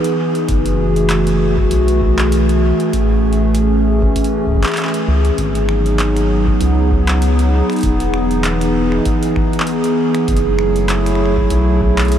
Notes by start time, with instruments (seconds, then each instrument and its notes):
Already playing: ambient pad E3 B3 D#4 G#4
0.04 closed hi-hat
0.35 closed hi-hat
0.48 analog synth bass F#1, ambient pad A3 F#4, kick, closed hi-hat
0.66 closed hi-hat
0.96 closed hi-hat
1.10 clap, closed hi-hat
1.27 closed hi-hat
1.57 kick
1.71 analog synth bass B1, closed hi-hat
1.88 closed hi-hat
2.02 kick
2.19 clap, closed hi-hat
2.32 closed hi-hat
2.49 closed hi-hat
2.80 closed hi-hat
2.93 analog synth bass A1, ambient pad E3 C#4, kick, closed hi-hat
3.33 closed hi-hat
3.55 closed hi-hat
4.02 kick
4.16 kick, closed hi-hat
4.24 closed hi-hat
4.46 kick
4.49 kick
4.52 kick
4.55 kick
4.57 kick
4.61 kick, clap, closed hi-hat
4.67 clap
4.72 clap
4.77 clap, closed hi-hat
4.83 clap
4.87 clap
4.94 closed hi-hat
5.08 analog synth bass C#2
5.25 closed hi-hat
5.38 analog synth bass G#1, ambient pad F#3 B3 D#4 G#4, kick, closed hi-hat
5.55 closed hi-hat
5.69 finger snap
5.86 closed hi-hat
5.99 clap, closed hi-hat
6.17 finger snap, closed hi-hat
6.47 kick
6.61 analog synth bass C#2, closed hi-hat
6.91 kick
7.08 finger snap, clap, closed hi-hat
7.22 closed hi-hat
7.39 closed hi-hat
7.70 finger snap, closed hi-hat
7.72 closed hi-hat
7.76 closed hi-hat
7.79 closed hi-hat
7.81 analog synth bass E1, kick, closed hi-hat
7.83 ambient pad E3, closed hi-hat
8.00 closed hi-hat
8.14 finger snap
8.31 closed hi-hat
8.44 clap, closed hi-hat
8.61 finger snap, closed hi-hat
8.92 finger snap
9.05 kick, closed hi-hat
9.23 closed hi-hat
9.36 finger snap, kick
9.53 closed hi-hat
9.60 clap
9.67 closed hi-hat
9.84 closed hi-hat
10.15 finger snap, closed hi-hat
10.28 analog synth bass F#1, ambient pad F#3 A3 E4, kick, closed hi-hat
10.37 closed hi-hat
10.59 finger snap
10.76 closed hi-hat
10.89 clap, closed hi-hat
11.06 finger snap, closed hi-hat
11.15 finger snap
11.26 finger snap
11.37 kick
11.50 analog synth bass B1, closed hi-hat
11.81 kick
11.98 finger snap, clap, closed hi-hat
12.02 closed hi-hat
12.05 closed hi-hat
12.08 closed hi-hat
12.12 closed hi-hat